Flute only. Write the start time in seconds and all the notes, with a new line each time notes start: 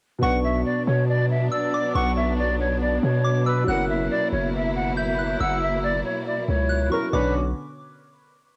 0.22 F#5
0.44 E5
0.66 D5
0.87 C#5
1.09 D5
1.31 E5
1.52 D5
1.95 F#5
2.17 E5
2.38 D5
2.60 C#5
2.82 D5
3.03 C#5
3.46 B4
3.68 F#5
3.89 E5
4.11 D5
4.33 C#5
4.54 E5
4.76 F#5
4.97 E5
5.41 F#5
5.62 E5
5.83 D5
6.05 C#5
6.27 D5
6.49 C#5
6.92 A#4
7.13 B4